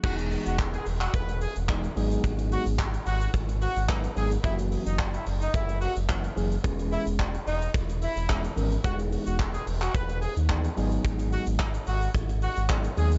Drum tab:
CC |x---------------|----------------|----------------|----------------|
HH |-xoxxxoxxxoxxxox|xxoxxxoxxxoxxxox|xxoxxxoxxxoxxxox|xxoxxxoxxxoxxxox|
SH |-xxxxxxxxxxxxxxx|xxxxxxxxxxxxxxxx|xxxxxxxxxxxxxxxx|xxxxxxxxxxxxxxxx|
CP |----x--x----x---|----x-------x---|----x-------x---|----x-------x---|
BD |o---o---o---o---|o---o---o---o---|o---o---o---o---|o---o---o---o---|

CC |----------------|----------------|
HH |xxoxxxoxxxoxxxox|xxoxxxoxxxoxxxox|
SH |xxxxxxxxxxxxxxxx|xxxxxxxxxxxxxxxx|
CP |----x--x----x---|----x-------x---|
BD |o---o---o---o---|o---o---o---o---|